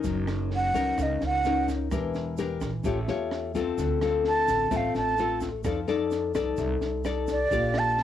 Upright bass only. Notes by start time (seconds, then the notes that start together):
0.04 F#1
0.74 C#2
0.98 C#2
1.22 C#2
1.91 E1
2.61 A#1
2.84 A1
3.08 E2
3.78 D2
4.48 A1
4.71 A1
4.95 A1
5.65 F2
6.35 C2
6.58 C2
6.81 C2
7.51 A#1